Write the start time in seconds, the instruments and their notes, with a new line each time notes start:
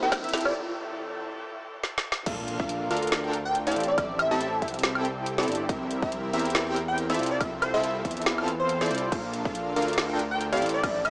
Already playing: analog synth pad E3 C4 A#4, grand piano A#3 C4 E4 G4 C5, riser
0.02 supersaw synth C4 E4 G4 A#4 E5, digital synth lead G5
0.12 kick, snare, closed hi-hat, high woodblock
0.24 digital synth lead E5, closed hi-hat
0.29 closed hi-hat
0.33 analog synth pad C3 F3 E4 A4, supersaw synth C4 E4 G4 A4 E5, snare, closed hi-hat
0.37 closed hi-hat
0.41 closed hi-hat
0.45 digital synth lead D5, high woodblock
1.84 snare
1.98 snare
2.12 snare
2.26 analog synth bass A#1, supersaw synth D4 F4 A4 A#4 F5, synth pluck F5, kick, closed hi-hat, crash, impact
2.48 closed hi-hat
2.60 supersaw synth D4 F4 A4 A#4 F5, synth pluck F5, kick
2.69 closed hi-hat
2.91 analog synth bass D2, supersaw synth D4 F4 A4 A#4 F5, synth pluck F5, closed hi-hat
2.97 closed hi-hat
3.03 closed hi-hat
3.07 closed hi-hat
3.12 snare, closed hi-hat
3.24 supersaw synth D4 F4 A4 A#4 G5, synth pluck G5
3.33 closed hi-hat
3.45 digital synth lead G5
3.55 closed hi-hat
3.67 supersaw synth C4 E4 G4 A4 D5, synth pluck D5, digital synth lead F5, closed hi-hat
3.72 closed hi-hat
3.76 analog synth bass A1, closed hi-hat
3.80 closed hi-hat
3.83 closed hi-hat
3.88 digital synth lead D5
3.98 analog synth bass A1, supersaw synth C4 E4 G4 A4 E5, digital synth lead D5, synth pluck E5, kick, closed hi-hat, high woodblock
4.19 digital synth lead E5, closed hi-hat, high woodblock
4.31 supersaw synth C4 E4 G4 A4 E5, synth pluck E5, digital synth lead A5
4.41 closed hi-hat
4.62 analog synth bass C2, supersaw synth C4 E4 G4 A4 E5, synth pluck E5, kick, closed hi-hat
4.68 closed hi-hat
4.74 closed hi-hat
4.79 closed hi-hat
4.83 snare, closed hi-hat
4.95 supersaw synth C4 E4 G4 A4 G5, synth pluck G5, high woodblock
5.05 closed hi-hat
5.26 closed hi-hat
5.38 supersaw synth C4 E4 G4 A4 D5, synth pluck D5, snare, closed hi-hat
5.43 closed hi-hat
5.48 analog synth bass G1, closed hi-hat
5.52 closed hi-hat
5.55 closed hi-hat
5.69 analog synth bass C2, supersaw synth C4 A#4 E5, synth pluck E5, kick, closed hi-hat
5.91 closed hi-hat
6.02 supersaw synth C4 E4 G4 A#4 E5, synth pluck E5, kick
6.12 closed hi-hat
6.33 analog synth bass E2, supersaw synth C4 E4 G4 A#4 E5, synth pluck E5, closed hi-hat
6.39 closed hi-hat
6.45 closed hi-hat
6.50 closed hi-hat
6.55 snare, closed hi-hat
6.67 supersaw synth C4 E4 G4 A#4 G5, synth pluck G5
6.76 closed hi-hat
6.88 digital synth lead G5
6.98 closed hi-hat
7.10 supersaw synth C4 E4 F4 A4 D5, synth pluck D5, digital synth lead E5, closed hi-hat
7.14 closed hi-hat
7.19 analog synth bass C2, closed hi-hat
7.23 closed hi-hat
7.26 closed hi-hat
7.31 digital synth lead D5
7.41 analog synth bass C2, supersaw synth C4 E4 F4 A4 E5, synth pluck E5, kick, closed hi-hat, high woodblock
7.62 digital synth lead C5, closed hi-hat, high woodblock
7.74 supersaw synth C4 E4 F4 A4 E5, synth pluck E5
7.84 closed hi-hat
8.05 analog synth bass E2, supersaw synth C4 E4 F4 A4 E5, synth pluck E5, kick, closed hi-hat
8.11 closed hi-hat
8.17 closed hi-hat
8.22 closed hi-hat
8.26 snare, closed hi-hat
8.38 supersaw synth C4 E4 F4 A4 F5, synth pluck A5, high woodblock
8.48 closed hi-hat
8.60 digital synth lead C5
8.69 closed hi-hat
8.81 supersaw synth C4 E4 F4 A4 D5, synth pluck D5, snare, closed hi-hat
8.86 closed hi-hat
8.91 analog synth bass C2, closed hi-hat
8.95 closed hi-hat
8.98 closed hi-hat
9.12 analog synth bass A#1, supersaw synth D4 F4 A4 A#4 F5, synth pluck F5, kick, closed hi-hat, crash
9.34 closed hi-hat
9.45 supersaw synth D4 F4 A4 A#4 F5, synth pluck F5, kick
9.55 closed hi-hat
9.76 analog synth bass D2, supersaw synth D4 F4 A4 A#4 F5, synth pluck F5, closed hi-hat
9.82 closed hi-hat
9.88 closed hi-hat
9.93 closed hi-hat
9.98 snare, closed hi-hat, crash
10.10 supersaw synth D4 F4 A4 A#4 G5, synth pluck G5
10.19 closed hi-hat
10.31 digital synth lead G5
10.41 closed hi-hat
10.53 supersaw synth C4 E4 G4 A4 D5, synth pluck D5, digital synth lead F5, closed hi-hat
10.57 closed hi-hat
10.62 analog synth bass A1, closed hi-hat
10.66 closed hi-hat
10.69 closed hi-hat
10.74 digital synth lead D5
10.83 analog synth bass A1, supersaw synth C4 E4 G4 A4 E5, digital synth lead D5, synth pluck E5, kick, closed hi-hat, crash, high woodblock
11.05 digital synth lead E5, closed hi-hat, high woodblock